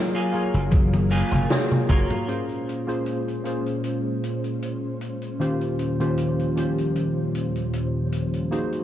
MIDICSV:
0, 0, Header, 1, 6, 480
1, 0, Start_track
1, 0, Key_signature, -5, "minor"
1, 0, Tempo, 779221
1, 1407, Time_signature, 4, 2, 24, 8
1, 5444, End_track
2, 0, Start_track
2, 0, Title_t, "Clean electric guitar"
2, 0, Program_c, 0, 27
2, 90, Note_on_c, 0, 58, 83
2, 93, Note_on_c, 0, 65, 79
2, 98, Note_on_c, 0, 68, 83
2, 389, Note_off_c, 0, 58, 0
2, 390, Note_off_c, 0, 65, 0
2, 391, Note_off_c, 0, 68, 0
2, 682, Note_on_c, 0, 58, 108
2, 685, Note_on_c, 0, 65, 103
2, 688, Note_on_c, 0, 68, 121
2, 924, Note_off_c, 0, 58, 0
2, 926, Note_off_c, 0, 65, 0
2, 927, Note_off_c, 0, 68, 0
2, 1164, Note_on_c, 0, 58, 86
2, 1167, Note_on_c, 0, 65, 81
2, 1171, Note_on_c, 0, 70, 88
2, 1405, Note_off_c, 0, 58, 0
2, 1407, Note_off_c, 0, 65, 0
2, 1408, Note_off_c, 0, 70, 0
2, 5444, End_track
3, 0, Start_track
3, 0, Title_t, "Synth keys"
3, 0, Program_c, 1, 88
3, 0, Control_c, 1, 64, 127
3, 0, Note_on_c, 1, 54, 77
3, 0, Note_on_c, 1, 58, 85
3, 0, Note_on_c, 1, 65, 75
3, 0, Note_on_c, 1, 68, 76
3, 0, Note_on_c, 1, 73, 92
3, 178, Note_off_c, 1, 58, 0
3, 179, Note_off_c, 1, 65, 0
3, 180, Note_off_c, 1, 54, 0
3, 181, Note_off_c, 1, 68, 0
3, 182, Note_off_c, 1, 73, 0
3, 198, Note_on_c, 1, 58, 75
3, 202, Note_on_c, 1, 65, 69
3, 208, Note_on_c, 1, 54, 70
3, 213, Note_on_c, 1, 68, 71
3, 217, Note_on_c, 1, 73, 81
3, 900, Note_off_c, 1, 58, 0
3, 902, Note_off_c, 1, 65, 0
3, 905, Note_off_c, 1, 54, 0
3, 908, Note_off_c, 1, 68, 0
3, 910, Note_off_c, 1, 73, 0
3, 922, Note_on_c, 1, 58, 82
3, 924, Note_on_c, 1, 65, 74
3, 926, Note_on_c, 1, 66, 72
3, 930, Note_on_c, 1, 68, 78
3, 932, Note_on_c, 1, 73, 91
3, 1010, Note_off_c, 1, 58, 0
3, 1011, Note_off_c, 1, 65, 0
3, 1012, Note_off_c, 1, 66, 0
3, 1014, Note_off_c, 1, 68, 0
3, 1015, Note_off_c, 1, 73, 0
3, 1161, Note_on_c, 1, 58, 89
3, 1164, Note_on_c, 1, 65, 86
3, 1166, Note_on_c, 1, 66, 83
3, 1169, Note_on_c, 1, 68, 82
3, 1172, Note_on_c, 1, 73, 100
3, 1250, Note_off_c, 1, 58, 0
3, 1251, Note_off_c, 1, 65, 0
3, 1252, Note_off_c, 1, 66, 0
3, 1254, Note_off_c, 1, 68, 0
3, 1255, Note_off_c, 1, 73, 0
3, 1399, Note_on_c, 1, 58, 73
3, 1402, Note_on_c, 1, 61, 65
3, 1404, Note_on_c, 1, 65, 65
3, 1407, Note_on_c, 1, 68, 65
3, 1410, Note_on_c, 1, 72, 79
3, 1415, Control_c, 1, 64, 0
3, 1539, Control_c, 1, 64, 127
3, 1741, Note_off_c, 1, 58, 0
3, 1743, Note_off_c, 1, 61, 0
3, 1744, Note_off_c, 1, 65, 0
3, 1745, Note_off_c, 1, 68, 0
3, 1746, Note_off_c, 1, 72, 0
3, 1767, Note_on_c, 1, 58, 77
3, 1770, Note_on_c, 1, 61, 70
3, 1771, Note_on_c, 1, 65, 69
3, 1775, Note_on_c, 1, 68, 71
3, 1776, Note_on_c, 1, 72, 86
3, 2096, Note_off_c, 1, 58, 0
3, 2097, Note_off_c, 1, 61, 0
3, 2098, Note_off_c, 1, 65, 0
3, 2099, Note_off_c, 1, 68, 0
3, 2100, Note_off_c, 1, 72, 0
3, 2117, Note_on_c, 1, 58, 70
3, 2120, Note_on_c, 1, 61, 64
3, 2125, Note_on_c, 1, 65, 63
3, 2131, Note_on_c, 1, 68, 63
3, 2135, Note_on_c, 1, 72, 76
3, 3295, Note_off_c, 1, 58, 0
3, 3297, Note_off_c, 1, 61, 0
3, 3299, Note_off_c, 1, 65, 0
3, 3302, Note_off_c, 1, 68, 0
3, 3304, Note_off_c, 1, 72, 0
3, 3322, Note_on_c, 1, 51, 72
3, 3324, Note_on_c, 1, 58, 66
3, 3327, Note_on_c, 1, 61, 65
3, 3329, Note_on_c, 1, 65, 68
3, 3330, Note_on_c, 1, 67, 66
3, 3333, Note_on_c, 1, 72, 80
3, 3334, Control_c, 1, 64, 0
3, 3435, Control_c, 1, 64, 127
3, 3663, Note_off_c, 1, 51, 0
3, 3664, Note_off_c, 1, 58, 0
3, 3665, Note_off_c, 1, 61, 0
3, 3666, Note_off_c, 1, 65, 0
3, 3666, Note_off_c, 1, 67, 0
3, 3668, Note_off_c, 1, 72, 0
3, 3695, Note_on_c, 1, 51, 78
3, 3696, Note_on_c, 1, 58, 69
3, 3699, Note_on_c, 1, 61, 70
3, 3700, Note_on_c, 1, 65, 71
3, 3703, Note_on_c, 1, 67, 72
3, 3704, Note_on_c, 1, 72, 85
3, 4020, Note_off_c, 1, 51, 0
3, 4020, Note_off_c, 1, 58, 0
3, 4022, Note_off_c, 1, 61, 0
3, 4022, Note_off_c, 1, 65, 0
3, 4024, Note_off_c, 1, 67, 0
3, 4024, Note_off_c, 1, 72, 0
3, 4038, Note_on_c, 1, 51, 69
3, 4043, Note_on_c, 1, 58, 62
3, 4045, Note_on_c, 1, 61, 64
3, 4050, Note_on_c, 1, 65, 63
3, 4053, Note_on_c, 1, 67, 65
3, 4058, Note_on_c, 1, 72, 77
3, 5216, Note_off_c, 1, 51, 0
3, 5218, Note_off_c, 1, 58, 0
3, 5219, Note_off_c, 1, 61, 0
3, 5222, Note_off_c, 1, 65, 0
3, 5223, Note_off_c, 1, 67, 0
3, 5226, Note_off_c, 1, 72, 0
3, 5241, Note_on_c, 1, 58, 73
3, 5244, Note_on_c, 1, 63, 66
3, 5246, Note_on_c, 1, 66, 68
3, 5247, Note_on_c, 1, 68, 69
3, 5251, Note_on_c, 1, 72, 82
3, 5254, Control_c, 1, 64, 0
3, 5353, Control_c, 1, 64, 127
3, 5444, Note_off_c, 1, 58, 0
3, 5444, Note_off_c, 1, 63, 0
3, 5444, Note_off_c, 1, 66, 0
3, 5444, Note_off_c, 1, 68, 0
3, 5444, Note_off_c, 1, 72, 0
3, 5444, End_track
4, 0, Start_track
4, 0, Title_t, "String machine"
4, 0, Program_c, 2, 50
4, 0, Note_on_c, 2, 54, 78
4, 0, Note_on_c, 2, 68, 73
4, 0, Note_on_c, 2, 70, 89
4, 0, Note_on_c, 2, 77, 73
4, 1384, Note_off_c, 2, 54, 0
4, 1384, Note_off_c, 2, 68, 0
4, 1384, Note_off_c, 2, 70, 0
4, 1385, Note_off_c, 2, 77, 0
4, 1404, Note_on_c, 2, 61, 69
4, 1405, Note_on_c, 2, 46, 75
4, 1405, Note_on_c, 2, 56, 67
4, 1405, Note_on_c, 2, 72, 79
4, 3306, Note_off_c, 2, 46, 0
4, 3307, Note_off_c, 2, 56, 0
4, 3323, Note_on_c, 2, 39, 74
4, 3323, Note_on_c, 2, 46, 67
4, 3323, Note_on_c, 2, 53, 69
4, 3325, Note_on_c, 2, 55, 68
4, 5221, Note_off_c, 2, 61, 0
4, 5221, Note_off_c, 2, 72, 0
4, 5226, Note_off_c, 2, 39, 0
4, 5226, Note_off_c, 2, 46, 0
4, 5226, Note_off_c, 2, 53, 0
4, 5227, Note_off_c, 2, 55, 0
4, 5249, Note_on_c, 2, 44, 75
4, 5249, Note_on_c, 2, 54, 67
4, 5249, Note_on_c, 2, 60, 68
4, 5250, Note_on_c, 2, 70, 83
4, 5444, Note_off_c, 2, 44, 0
4, 5444, Note_off_c, 2, 54, 0
4, 5444, Note_off_c, 2, 60, 0
4, 5444, Note_off_c, 2, 70, 0
4, 5444, End_track
5, 0, Start_track
5, 0, Title_t, "Slap bass"
5, 0, Program_c, 3, 36
5, 333, Note_on_c, 3, 30, 93
5, 750, Note_off_c, 3, 30, 0
5, 815, Note_on_c, 3, 30, 90
5, 892, Note_off_c, 3, 30, 0
5, 1167, Note_on_c, 3, 30, 82
5, 1256, Note_off_c, 3, 30, 0
5, 5444, End_track
6, 0, Start_track
6, 0, Title_t, "Drums"
6, 95, Note_on_c, 9, 42, 51
6, 156, Note_off_c, 9, 42, 0
6, 204, Note_on_c, 9, 42, 78
6, 265, Note_off_c, 9, 42, 0
6, 332, Note_on_c, 9, 42, 60
6, 394, Note_off_c, 9, 42, 0
6, 440, Note_on_c, 9, 48, 66
6, 445, Note_on_c, 9, 42, 94
6, 446, Note_on_c, 9, 36, 113
6, 501, Note_off_c, 9, 48, 0
6, 507, Note_off_c, 9, 36, 0
6, 507, Note_off_c, 9, 42, 0
6, 575, Note_on_c, 9, 48, 60
6, 576, Note_on_c, 9, 42, 52
6, 636, Note_off_c, 9, 48, 0
6, 638, Note_off_c, 9, 42, 0
6, 681, Note_on_c, 9, 42, 79
6, 743, Note_off_c, 9, 42, 0
6, 811, Note_on_c, 9, 47, 69
6, 815, Note_on_c, 9, 42, 68
6, 873, Note_off_c, 9, 47, 0
6, 876, Note_off_c, 9, 42, 0
6, 927, Note_on_c, 9, 38, 121
6, 928, Note_on_c, 9, 42, 80
6, 928, Note_on_c, 9, 47, 84
6, 989, Note_off_c, 9, 38, 0
6, 990, Note_off_c, 9, 42, 0
6, 990, Note_off_c, 9, 47, 0
6, 1056, Note_on_c, 9, 47, 76
6, 1118, Note_off_c, 9, 47, 0
6, 1164, Note_on_c, 9, 42, 80
6, 1167, Note_on_c, 9, 36, 101
6, 1167, Note_on_c, 9, 45, 95
6, 1225, Note_off_c, 9, 42, 0
6, 1228, Note_off_c, 9, 36, 0
6, 1228, Note_off_c, 9, 45, 0
6, 1294, Note_on_c, 9, 42, 64
6, 1295, Note_on_c, 9, 45, 86
6, 1355, Note_off_c, 9, 42, 0
6, 1356, Note_off_c, 9, 45, 0
6, 1408, Note_on_c, 9, 42, 89
6, 1470, Note_off_c, 9, 42, 0
6, 1532, Note_on_c, 9, 42, 48
6, 1594, Note_off_c, 9, 42, 0
6, 1655, Note_on_c, 9, 42, 84
6, 1717, Note_off_c, 9, 42, 0
6, 1779, Note_on_c, 9, 42, 64
6, 1840, Note_off_c, 9, 42, 0
6, 1884, Note_on_c, 9, 42, 77
6, 1946, Note_off_c, 9, 42, 0
6, 2020, Note_on_c, 9, 42, 55
6, 2082, Note_off_c, 9, 42, 0
6, 2125, Note_on_c, 9, 42, 85
6, 2187, Note_off_c, 9, 42, 0
6, 2255, Note_on_c, 9, 42, 59
6, 2317, Note_off_c, 9, 42, 0
6, 2363, Note_on_c, 9, 42, 85
6, 2425, Note_off_c, 9, 42, 0
6, 2609, Note_on_c, 9, 42, 90
6, 2670, Note_off_c, 9, 42, 0
6, 2734, Note_on_c, 9, 42, 57
6, 2795, Note_off_c, 9, 42, 0
6, 2848, Note_on_c, 9, 42, 75
6, 2909, Note_off_c, 9, 42, 0
6, 3086, Note_on_c, 9, 42, 82
6, 3148, Note_off_c, 9, 42, 0
6, 3213, Note_on_c, 9, 42, 57
6, 3275, Note_off_c, 9, 42, 0
6, 3334, Note_on_c, 9, 42, 87
6, 3396, Note_off_c, 9, 42, 0
6, 3456, Note_on_c, 9, 42, 52
6, 3518, Note_off_c, 9, 42, 0
6, 3567, Note_on_c, 9, 42, 80
6, 3628, Note_off_c, 9, 42, 0
6, 3698, Note_on_c, 9, 42, 60
6, 3760, Note_off_c, 9, 42, 0
6, 3804, Note_on_c, 9, 42, 82
6, 3865, Note_off_c, 9, 42, 0
6, 3939, Note_on_c, 9, 42, 51
6, 4001, Note_off_c, 9, 42, 0
6, 4048, Note_on_c, 9, 42, 88
6, 4110, Note_off_c, 9, 42, 0
6, 4178, Note_on_c, 9, 42, 65
6, 4239, Note_off_c, 9, 42, 0
6, 4285, Note_on_c, 9, 42, 76
6, 4346, Note_off_c, 9, 42, 0
6, 4526, Note_on_c, 9, 42, 75
6, 4588, Note_off_c, 9, 42, 0
6, 4654, Note_on_c, 9, 42, 60
6, 4715, Note_off_c, 9, 42, 0
6, 4763, Note_on_c, 9, 42, 88
6, 4825, Note_off_c, 9, 42, 0
6, 5003, Note_on_c, 9, 42, 87
6, 5065, Note_off_c, 9, 42, 0
6, 5134, Note_on_c, 9, 42, 60
6, 5195, Note_off_c, 9, 42, 0
6, 5249, Note_on_c, 9, 42, 81
6, 5310, Note_off_c, 9, 42, 0
6, 5374, Note_on_c, 9, 42, 53
6, 5435, Note_off_c, 9, 42, 0
6, 5444, End_track
0, 0, End_of_file